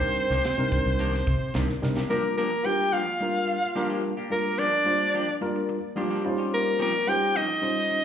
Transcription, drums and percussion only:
0.17 closed hi-hat
0.32 snare
0.44 snare, closed hi-hat
0.72 kick, closed hi-hat
0.99 closed hi-hat
1.15 snare
1.27 kick, closed hi-hat
1.54 snare, closed hi-hat
1.69 snare
1.83 snare
1.97 snare

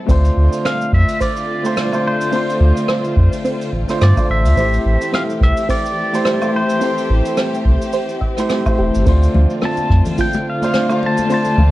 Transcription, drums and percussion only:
0.09 kick, open hi-hat, cabasa
0.24 open hi-hat, cabasa
0.53 open hi-hat, cabasa
0.65 cross-stick, open hi-hat, cabasa
0.81 cabasa
0.93 kick, cross-stick
1.08 open hi-hat, cabasa
1.21 kick, open hi-hat, cabasa
1.36 open hi-hat, cabasa
1.64 open hi-hat, cabasa
1.77 cross-stick, open hi-hat, cabasa
1.93 cabasa, low woodblock
2.21 open hi-hat, cabasa
2.32 open hi-hat, cabasa
2.49 open hi-hat, cabasa
2.77 open hi-hat, cabasa
2.88 cross-stick, open hi-hat, cabasa
3.04 cabasa
3.17 kick
3.33 open hi-hat, cabasa
3.44 open hi-hat, cabasa
3.61 open hi-hat, cabasa
3.73 kick
3.89 cross-stick, open hi-hat, cabasa
4.01 cross-stick, open hi-hat, cabasa
4.17 kick, open hi-hat, cabasa, low woodblock
4.45 open hi-hat, cabasa
4.57 kick, open hi-hat, cabasa
4.73 open hi-hat, cabasa
5.02 open hi-hat, cabasa
5.14 cross-stick, open hi-hat, cabasa
5.30 cabasa
5.41 kick, cross-stick
5.57 open hi-hat, cabasa
5.69 kick, open hi-hat, cabasa
5.86 open hi-hat, cabasa
6.13 open hi-hat, cabasa
6.25 cross-stick, open hi-hat, cabasa
6.42 cabasa, low woodblock
6.69 open hi-hat, cabasa
6.81 open hi-hat, cabasa
6.98 open hi-hat, cabasa
7.25 open hi-hat, cabasa
7.37 cross-stick, open hi-hat, cabasa
7.55 cabasa
7.66 kick
7.82 open hi-hat, cabasa
7.93 open hi-hat, cabasa
8.09 open hi-hat, cabasa
8.22 kick
8.37 cross-stick, open hi-hat, cabasa
8.49 cross-stick, open hi-hat, cabasa
8.65 kick, open hi-hat, cabasa, low woodblock
8.94 open hi-hat, cabasa
9.06 kick, open hi-hat, cabasa
9.21 open hi-hat, cabasa
9.34 muted conga, high conga, low conga
9.50 open hi-hat, cabasa
9.61 cross-stick, open hi-hat, muted conga, cabasa
9.77 high conga, cabasa
9.90 kick, cross-stick
10.05 open hi-hat, muted conga, low conga, cabasa
10.18 kick, open hi-hat, high conga, cabasa
10.33 open hi-hat, muted conga, cabasa
10.62 open hi-hat, high conga, cabasa
10.74 cross-stick, open hi-hat, muted conga, cabasa
10.89 cabasa, low woodblock
11.03 muted conga
11.18 open hi-hat, high conga, cabasa
11.30 open hi-hat, cabasa
11.45 open hi-hat, muted conga, cabasa
11.59 high conga, low conga

